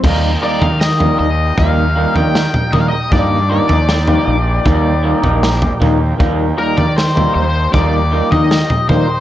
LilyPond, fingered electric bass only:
\new Staff \with { instrumentName = "Fingered electric bass" } { \clef bass \time 4/4 \key ees \major \tempo 4 = 78 ees,8 r16 ees8. ees,8 ees,8. ees8 r16 ees16 r16 | g,8. ees,8. bes,,8 ees,8. bes,,8. ees,8 | ees,8 r16 ees8. ees,8 ees,8. ees8 r16 ees16 r16 | }